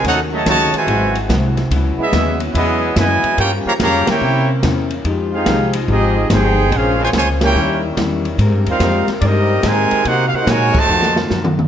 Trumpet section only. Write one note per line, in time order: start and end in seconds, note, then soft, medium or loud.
0.07 0.19 D#4 medium
0.07 0.20 A4 medium
0.07 0.19 C#5 medium
0.07 0.20 F#5 loud
0.34 0.47 F#4 medium
0.34 0.47 C#5 medium
0.34 0.47 D#5 medium
0.34 0.47 A5 medium
0.49 0.74 F#4 loud
0.49 0.74 C#5 loud
0.49 0.74 D#5 medium
0.49 0.73 A5 loud
0.77 1.17 F#4 medium
0.77 1.17 C5 medium
0.77 1.17 E5 medium
0.77 1.17 G#5 loud
2.02 2.39 B3 medium
2.02 2.39 G#4 medium
2.02 2.39 D#5 medium
2.02 2.40 E5 loud
2.56 2.95 B3 medium
2.56 2.94 E4 medium
2.56 2.94 G#4 medium
2.56 2.94 D#5 medium
2.99 3.39 E4 loud
2.99 3.40 B4 medium
2.99 3.39 D#5 medium
2.99 3.39 G#5 loud
3.40 3.52 F4 medium
3.40 3.52 A#4 medium
3.40 3.52 C#5 medium
3.40 3.52 G5 loud
3.67 3.73 G4 medium
3.67 3.74 C#5 medium
3.67 3.73 F5 medium
3.67 3.74 A#5 loud
3.82 4.07 G4 medium
3.82 4.06 C#5 loud
3.82 4.07 F5 loud
3.82 4.07 A#5 loud
4.10 4.50 E4 medium
4.10 4.51 A#4 medium
4.10 4.50 C#5 medium
4.10 4.50 G5 loud
5.34 5.73 D#4 medium
5.34 5.72 G#4 medium
5.34 5.72 C5 medium
5.34 5.72 F5 medium
5.91 6.29 C4 medium
5.91 6.28 G4 medium
5.91 6.29 G#4 medium
5.91 6.28 D#5 medium
6.33 6.73 D#4 medium
6.33 6.73 G#4 medium
6.33 6.73 C5 medium
6.33 6.73 G5 medium
6.76 7.02 C#4 medium
6.76 7.02 G#4 medium
6.76 7.02 C5 medium
6.76 7.02 F5 medium
7.04 7.09 F4 medium
7.04 7.09 C5 medium
7.04 7.09 C#5 medium
7.04 7.09 G#5 loud
7.17 7.29 F4 medium
7.17 7.28 C5 loud
7.17 7.28 C#5 medium
7.17 7.28 G#5 loud
7.44 7.81 E4 medium
7.44 7.82 A#4 medium
7.44 7.82 C#5 medium
7.44 7.81 G5 loud
8.70 9.07 D#4 medium
8.70 9.07 A#4 medium
8.70 9.07 C5 medium
8.70 9.07 F5 loud
9.20 9.23 D5 medium
9.26 9.66 C4 medium
9.26 9.66 G4 medium
9.26 9.65 A#4 medium
9.26 9.66 D#5 medium
9.66 10.06 D#4 medium
9.66 10.06 A#4 medium
9.66 10.05 C5 medium
9.66 10.07 G#5 loud
10.07 10.27 D#4 medium
10.07 10.27 A#4 medium
10.07 10.27 C5 medium
10.07 10.27 F#5 loud
10.27 10.33 F5 medium
10.35 10.48 D#4 medium
10.35 10.48 A#4 medium
10.35 10.48 C5 medium
10.35 10.48 F#5 loud
10.49 10.76 F#4 medium
10.49 10.76 A#4 loud
10.49 10.76 C#5 medium
10.49 10.76 G#5 loud
10.78 11.18 F#4 medium
10.78 11.18 C5 medium
10.78 11.18 D#5 medium
10.78 11.18 A5 loud